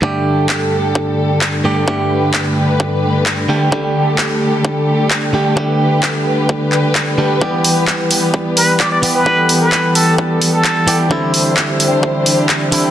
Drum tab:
HH |--------|--------|--------|--------|
CP |--x---x-|--x---x-|--x---x-|--x--xx-|
BD |o-o-o-o-|o-o-o-o-|o-o-o-o-|o-o-o-o-|

HH |-o-o-o-o|-o-o-o-o|-o-o-o-o|
CP |--x---x-|--x---x-|--x---x-|
BD |o-o-o-o-|o-o-o-o-|o-o-o-o-|